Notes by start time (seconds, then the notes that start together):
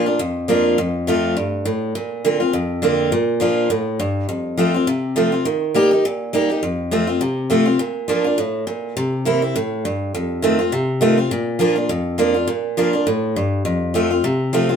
Already playing: A#2
0.06 D4 F4
0.19 F2
0.48 F3 A#3 D4 F4
0.78 F2
1.07 F3 A3 C4 F4
1.37 G2
1.65 A2
1.95 A#2
2.25 D3 A#3 C4 F4
2.40 C4 F4
2.53 F2
2.82 D3 A#3 C4 F4
3.12 A#2
3.40 F3 A#3 D4 F4
3.70 A2
4.00 G2
4.29 F2
4.57 F3 A3 C4 F4
4.74 C4 F4
4.87 C3
5.16 F3 A3 C4 F4
5.32 C4 F4
5.45 D#3
5.74 G3 A#3 D#4 G4
5.91 D#4 G4
6.05 A#2
6.33 G3 A#3 D#4 G4
6.50 D#4 G4
6.63 F2
6.91 F3 A3 C4 F4
7.07 C4 F4
7.21 C3
7.50 F3 A3 C4 F4
7.66 C4 F4
7.79 A#2
8.08 F3 A#3 D4 F4
8.24 D4 F4
8.38 A2
8.67 A#2
8.97 C3
9.25 E3 A#3 C4 E4
9.42 C4 E4
9.56 A2
9.85 G2
10.14 F2
10.42 D#3 A3 C4 F4
10.59 C4 F4
10.72 C3
11.01 D#3 A3 C4 F4
11.18 C4 F4
11.31 A#2
11.59 F3 A#3 D4 F4
11.76 D4 F4
11.89 F2
12.18 F3 A#3 D4 F4
12.34 D4 F4
12.47 A#2
12.77 F3 A#3 D4 F4
12.93 D4 F4
13.07 A2
13.36 G2
13.65 F2
13.94 F3 A3 C4 F4
14.11 C4 F4
14.24 C3
14.53 F3 A3 C4 F4
14.69 C4 F4